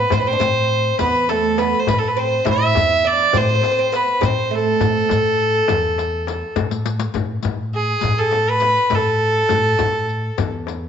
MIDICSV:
0, 0, Header, 1, 7, 480
1, 0, Start_track
1, 0, Tempo, 586510
1, 101, Time_signature, 4, 2, 24, 8
1, 8910, End_track
2, 0, Start_track
2, 0, Title_t, "Violin"
2, 0, Program_c, 0, 40
2, 0, Note_on_c, 0, 71, 79
2, 103, Note_on_c, 0, 72, 83
2, 115, Note_off_c, 0, 71, 0
2, 157, Note_on_c, 0, 71, 76
2, 170, Note_off_c, 0, 72, 0
2, 220, Note_on_c, 0, 72, 92
2, 232, Note_off_c, 0, 71, 0
2, 809, Note_off_c, 0, 72, 0
2, 814, Note_on_c, 0, 71, 91
2, 1053, Note_on_c, 0, 69, 79
2, 1065, Note_off_c, 0, 71, 0
2, 1296, Note_on_c, 0, 71, 83
2, 1308, Note_off_c, 0, 69, 0
2, 1468, Note_on_c, 0, 72, 77
2, 1480, Note_off_c, 0, 71, 0
2, 1545, Note_on_c, 0, 71, 80
2, 1557, Note_off_c, 0, 72, 0
2, 1626, Note_on_c, 0, 69, 70
2, 1638, Note_off_c, 0, 71, 0
2, 1703, Note_on_c, 0, 71, 69
2, 1715, Note_off_c, 0, 69, 0
2, 1792, Note_on_c, 0, 72, 77
2, 1804, Note_off_c, 0, 71, 0
2, 2025, Note_off_c, 0, 72, 0
2, 2043, Note_on_c, 0, 76, 93
2, 2514, Note_on_c, 0, 74, 96
2, 2527, Note_off_c, 0, 76, 0
2, 2759, Note_on_c, 0, 72, 100
2, 2772, Note_off_c, 0, 74, 0
2, 3238, Note_on_c, 0, 71, 83
2, 3250, Note_off_c, 0, 72, 0
2, 3479, Note_on_c, 0, 72, 89
2, 3492, Note_off_c, 0, 71, 0
2, 3721, Note_on_c, 0, 69, 90
2, 3733, Note_off_c, 0, 72, 0
2, 5388, Note_off_c, 0, 69, 0
2, 6338, Note_on_c, 0, 68, 87
2, 6700, Note_on_c, 0, 69, 83
2, 6712, Note_off_c, 0, 68, 0
2, 6951, Note_on_c, 0, 71, 97
2, 6963, Note_off_c, 0, 69, 0
2, 7318, Note_on_c, 0, 69, 94
2, 7330, Note_off_c, 0, 71, 0
2, 8591, Note_off_c, 0, 69, 0
2, 8910, End_track
3, 0, Start_track
3, 0, Title_t, "Oud"
3, 0, Program_c, 1, 24
3, 0, Note_on_c, 1, 59, 64
3, 99, Note_on_c, 1, 60, 73
3, 114, Note_off_c, 1, 59, 0
3, 211, Note_off_c, 1, 60, 0
3, 221, Note_on_c, 1, 60, 69
3, 265, Note_off_c, 1, 60, 0
3, 268, Note_on_c, 1, 62, 63
3, 322, Note_off_c, 1, 62, 0
3, 326, Note_on_c, 1, 60, 82
3, 786, Note_off_c, 1, 60, 0
3, 809, Note_on_c, 1, 59, 73
3, 1058, Note_off_c, 1, 59, 0
3, 1061, Note_on_c, 1, 57, 68
3, 1291, Note_off_c, 1, 57, 0
3, 1294, Note_on_c, 1, 59, 66
3, 1467, Note_off_c, 1, 59, 0
3, 1772, Note_on_c, 1, 60, 72
3, 1998, Note_off_c, 1, 60, 0
3, 2002, Note_on_c, 1, 64, 84
3, 2490, Note_off_c, 1, 64, 0
3, 2494, Note_on_c, 1, 62, 84
3, 2719, Note_off_c, 1, 62, 0
3, 2730, Note_on_c, 1, 60, 82
3, 2776, Note_off_c, 1, 60, 0
3, 2856, Note_on_c, 1, 60, 62
3, 2895, Note_off_c, 1, 60, 0
3, 2905, Note_on_c, 1, 60, 58
3, 2947, Note_off_c, 1, 60, 0
3, 2957, Note_on_c, 1, 60, 63
3, 3030, Note_off_c, 1, 60, 0
3, 3039, Note_on_c, 1, 60, 56
3, 3090, Note_off_c, 1, 60, 0
3, 3100, Note_on_c, 1, 60, 69
3, 3165, Note_off_c, 1, 60, 0
3, 3211, Note_on_c, 1, 59, 79
3, 3445, Note_on_c, 1, 60, 77
3, 3461, Note_off_c, 1, 59, 0
3, 3688, Note_on_c, 1, 57, 64
3, 3698, Note_off_c, 1, 60, 0
3, 5338, Note_off_c, 1, 57, 0
3, 8910, End_track
4, 0, Start_track
4, 0, Title_t, "Upright bass"
4, 0, Program_c, 2, 32
4, 100, Note_on_c, 2, 45, 87
4, 297, Note_off_c, 2, 45, 0
4, 340, Note_on_c, 2, 45, 79
4, 733, Note_off_c, 2, 45, 0
4, 818, Note_on_c, 2, 40, 82
4, 1408, Note_off_c, 2, 40, 0
4, 1542, Note_on_c, 2, 45, 85
4, 1934, Note_off_c, 2, 45, 0
4, 2021, Note_on_c, 2, 45, 91
4, 2216, Note_off_c, 2, 45, 0
4, 2254, Note_on_c, 2, 40, 82
4, 2648, Note_off_c, 2, 40, 0
4, 2742, Note_on_c, 2, 45, 91
4, 2937, Note_off_c, 2, 45, 0
4, 3457, Note_on_c, 2, 45, 83
4, 3850, Note_off_c, 2, 45, 0
4, 3932, Note_on_c, 2, 45, 86
4, 4130, Note_off_c, 2, 45, 0
4, 4177, Note_on_c, 2, 45, 80
4, 4569, Note_off_c, 2, 45, 0
4, 4654, Note_on_c, 2, 40, 74
4, 5244, Note_off_c, 2, 40, 0
4, 5366, Note_on_c, 2, 45, 85
4, 5763, Note_off_c, 2, 45, 0
4, 5849, Note_on_c, 2, 45, 93
4, 6048, Note_off_c, 2, 45, 0
4, 6093, Note_on_c, 2, 45, 77
4, 6487, Note_off_c, 2, 45, 0
4, 6574, Note_on_c, 2, 45, 89
4, 7164, Note_off_c, 2, 45, 0
4, 7296, Note_on_c, 2, 45, 75
4, 7689, Note_off_c, 2, 45, 0
4, 7779, Note_on_c, 2, 45, 84
4, 7975, Note_off_c, 2, 45, 0
4, 8023, Note_on_c, 2, 45, 75
4, 8414, Note_off_c, 2, 45, 0
4, 8499, Note_on_c, 2, 40, 81
4, 8910, Note_off_c, 2, 40, 0
4, 8910, End_track
5, 0, Start_track
5, 0, Title_t, "Darbuka"
5, 91, Note_on_c, 9, 64, 83
5, 173, Note_off_c, 9, 64, 0
5, 332, Note_on_c, 9, 64, 80
5, 414, Note_off_c, 9, 64, 0
5, 573, Note_on_c, 9, 62, 27
5, 655, Note_off_c, 9, 62, 0
5, 939, Note_on_c, 9, 62, 25
5, 1021, Note_off_c, 9, 62, 0
5, 1059, Note_on_c, 9, 63, 72
5, 1141, Note_off_c, 9, 63, 0
5, 1293, Note_on_c, 9, 63, 76
5, 1375, Note_off_c, 9, 63, 0
5, 1530, Note_on_c, 9, 64, 102
5, 1612, Note_off_c, 9, 64, 0
5, 2012, Note_on_c, 9, 64, 86
5, 2093, Note_off_c, 9, 64, 0
5, 2261, Note_on_c, 9, 64, 91
5, 2343, Note_off_c, 9, 64, 0
5, 2498, Note_on_c, 9, 62, 28
5, 2580, Note_off_c, 9, 62, 0
5, 2732, Note_on_c, 9, 64, 96
5, 2814, Note_off_c, 9, 64, 0
5, 2855, Note_on_c, 9, 62, 23
5, 2937, Note_off_c, 9, 62, 0
5, 2980, Note_on_c, 9, 63, 79
5, 3062, Note_off_c, 9, 63, 0
5, 3218, Note_on_c, 9, 63, 82
5, 3300, Note_off_c, 9, 63, 0
5, 3453, Note_on_c, 9, 64, 89
5, 3535, Note_off_c, 9, 64, 0
5, 3933, Note_on_c, 9, 64, 84
5, 4014, Note_off_c, 9, 64, 0
5, 4184, Note_on_c, 9, 64, 83
5, 4265, Note_off_c, 9, 64, 0
5, 4660, Note_on_c, 9, 64, 95
5, 4741, Note_off_c, 9, 64, 0
5, 4792, Note_on_c, 9, 62, 23
5, 4874, Note_off_c, 9, 62, 0
5, 4900, Note_on_c, 9, 63, 72
5, 4982, Note_off_c, 9, 63, 0
5, 5263, Note_on_c, 9, 62, 29
5, 5345, Note_off_c, 9, 62, 0
5, 5380, Note_on_c, 9, 64, 101
5, 5462, Note_off_c, 9, 64, 0
5, 5849, Note_on_c, 9, 64, 80
5, 5930, Note_off_c, 9, 64, 0
5, 6094, Note_on_c, 9, 64, 79
5, 6176, Note_off_c, 9, 64, 0
5, 6571, Note_on_c, 9, 64, 96
5, 6653, Note_off_c, 9, 64, 0
5, 6812, Note_on_c, 9, 63, 68
5, 6894, Note_off_c, 9, 63, 0
5, 7057, Note_on_c, 9, 63, 65
5, 7139, Note_off_c, 9, 63, 0
5, 7301, Note_on_c, 9, 64, 100
5, 7383, Note_off_c, 9, 64, 0
5, 7777, Note_on_c, 9, 64, 87
5, 7859, Note_off_c, 9, 64, 0
5, 8015, Note_on_c, 9, 64, 86
5, 8097, Note_off_c, 9, 64, 0
5, 8496, Note_on_c, 9, 64, 94
5, 8577, Note_off_c, 9, 64, 0
5, 8743, Note_on_c, 9, 63, 54
5, 8825, Note_off_c, 9, 63, 0
5, 8910, End_track
6, 0, Start_track
6, 0, Title_t, "Frame drum"
6, 84, Note_on_c, 9, 64, 84
6, 166, Note_off_c, 9, 64, 0
6, 326, Note_on_c, 9, 64, 74
6, 408, Note_off_c, 9, 64, 0
6, 809, Note_on_c, 9, 64, 84
6, 891, Note_off_c, 9, 64, 0
6, 1055, Note_on_c, 9, 64, 62
6, 1137, Note_off_c, 9, 64, 0
6, 1293, Note_on_c, 9, 64, 71
6, 1375, Note_off_c, 9, 64, 0
6, 1535, Note_on_c, 9, 64, 86
6, 1617, Note_off_c, 9, 64, 0
6, 2009, Note_on_c, 9, 64, 88
6, 2091, Note_off_c, 9, 64, 0
6, 2250, Note_on_c, 9, 64, 76
6, 2332, Note_off_c, 9, 64, 0
6, 2726, Note_on_c, 9, 64, 90
6, 2808, Note_off_c, 9, 64, 0
6, 2971, Note_on_c, 9, 64, 63
6, 3053, Note_off_c, 9, 64, 0
6, 3451, Note_on_c, 9, 64, 93
6, 3533, Note_off_c, 9, 64, 0
6, 3931, Note_on_c, 9, 64, 83
6, 4013, Note_off_c, 9, 64, 0
6, 4167, Note_on_c, 9, 64, 81
6, 4249, Note_off_c, 9, 64, 0
6, 4648, Note_on_c, 9, 64, 93
6, 4730, Note_off_c, 9, 64, 0
6, 4895, Note_on_c, 9, 64, 60
6, 4977, Note_off_c, 9, 64, 0
6, 5134, Note_on_c, 9, 64, 69
6, 5216, Note_off_c, 9, 64, 0
6, 5369, Note_on_c, 9, 64, 100
6, 5451, Note_off_c, 9, 64, 0
6, 5854, Note_on_c, 9, 64, 75
6, 5936, Note_off_c, 9, 64, 0
6, 6096, Note_on_c, 9, 64, 74
6, 6178, Note_off_c, 9, 64, 0
6, 6577, Note_on_c, 9, 64, 84
6, 6658, Note_off_c, 9, 64, 0
6, 6814, Note_on_c, 9, 64, 63
6, 6895, Note_off_c, 9, 64, 0
6, 7052, Note_on_c, 9, 64, 63
6, 7134, Note_off_c, 9, 64, 0
6, 7290, Note_on_c, 9, 64, 86
6, 7372, Note_off_c, 9, 64, 0
6, 7767, Note_on_c, 9, 64, 91
6, 7848, Note_off_c, 9, 64, 0
6, 8011, Note_on_c, 9, 64, 82
6, 8093, Note_off_c, 9, 64, 0
6, 8495, Note_on_c, 9, 64, 86
6, 8577, Note_off_c, 9, 64, 0
6, 8731, Note_on_c, 9, 64, 62
6, 8812, Note_off_c, 9, 64, 0
6, 8910, End_track
7, 0, Start_track
7, 0, Title_t, "Riq"
7, 97, Note_on_c, 9, 54, 72
7, 179, Note_off_c, 9, 54, 0
7, 336, Note_on_c, 9, 54, 75
7, 418, Note_off_c, 9, 54, 0
7, 809, Note_on_c, 9, 54, 65
7, 891, Note_off_c, 9, 54, 0
7, 936, Note_on_c, 9, 54, 18
7, 1018, Note_off_c, 9, 54, 0
7, 1055, Note_on_c, 9, 54, 53
7, 1137, Note_off_c, 9, 54, 0
7, 1300, Note_on_c, 9, 54, 53
7, 1382, Note_off_c, 9, 54, 0
7, 1428, Note_on_c, 9, 54, 19
7, 1510, Note_off_c, 9, 54, 0
7, 1541, Note_on_c, 9, 54, 75
7, 1623, Note_off_c, 9, 54, 0
7, 1780, Note_on_c, 9, 54, 19
7, 1862, Note_off_c, 9, 54, 0
7, 2016, Note_on_c, 9, 54, 74
7, 2098, Note_off_c, 9, 54, 0
7, 2267, Note_on_c, 9, 54, 66
7, 2348, Note_off_c, 9, 54, 0
7, 2736, Note_on_c, 9, 54, 66
7, 2818, Note_off_c, 9, 54, 0
7, 2856, Note_on_c, 9, 54, 18
7, 2938, Note_off_c, 9, 54, 0
7, 2978, Note_on_c, 9, 54, 45
7, 3060, Note_off_c, 9, 54, 0
7, 3222, Note_on_c, 9, 54, 55
7, 3304, Note_off_c, 9, 54, 0
7, 3336, Note_on_c, 9, 54, 19
7, 3418, Note_off_c, 9, 54, 0
7, 3461, Note_on_c, 9, 54, 64
7, 3542, Note_off_c, 9, 54, 0
7, 3937, Note_on_c, 9, 54, 64
7, 4019, Note_off_c, 9, 54, 0
7, 4182, Note_on_c, 9, 54, 64
7, 4264, Note_off_c, 9, 54, 0
7, 4418, Note_on_c, 9, 54, 20
7, 4500, Note_off_c, 9, 54, 0
7, 4657, Note_on_c, 9, 54, 59
7, 4739, Note_off_c, 9, 54, 0
7, 4903, Note_on_c, 9, 54, 46
7, 4985, Note_off_c, 9, 54, 0
7, 5142, Note_on_c, 9, 54, 55
7, 5223, Note_off_c, 9, 54, 0
7, 5369, Note_on_c, 9, 54, 53
7, 5451, Note_off_c, 9, 54, 0
7, 5494, Note_on_c, 9, 54, 61
7, 5575, Note_off_c, 9, 54, 0
7, 5611, Note_on_c, 9, 54, 83
7, 5693, Note_off_c, 9, 54, 0
7, 5725, Note_on_c, 9, 54, 85
7, 5807, Note_off_c, 9, 54, 0
7, 5842, Note_on_c, 9, 54, 55
7, 5924, Note_off_c, 9, 54, 0
7, 6077, Note_on_c, 9, 54, 56
7, 6159, Note_off_c, 9, 54, 0
7, 6327, Note_on_c, 9, 54, 19
7, 6409, Note_off_c, 9, 54, 0
7, 6556, Note_on_c, 9, 54, 59
7, 6638, Note_off_c, 9, 54, 0
7, 6803, Note_on_c, 9, 54, 45
7, 6885, Note_off_c, 9, 54, 0
7, 7038, Note_on_c, 9, 54, 51
7, 7120, Note_off_c, 9, 54, 0
7, 7166, Note_on_c, 9, 54, 18
7, 7248, Note_off_c, 9, 54, 0
7, 7284, Note_on_c, 9, 54, 61
7, 7366, Note_off_c, 9, 54, 0
7, 7772, Note_on_c, 9, 54, 57
7, 7854, Note_off_c, 9, 54, 0
7, 8010, Note_on_c, 9, 54, 60
7, 8092, Note_off_c, 9, 54, 0
7, 8258, Note_on_c, 9, 54, 18
7, 8340, Note_off_c, 9, 54, 0
7, 8493, Note_on_c, 9, 54, 59
7, 8575, Note_off_c, 9, 54, 0
7, 8743, Note_on_c, 9, 54, 44
7, 8824, Note_off_c, 9, 54, 0
7, 8910, End_track
0, 0, End_of_file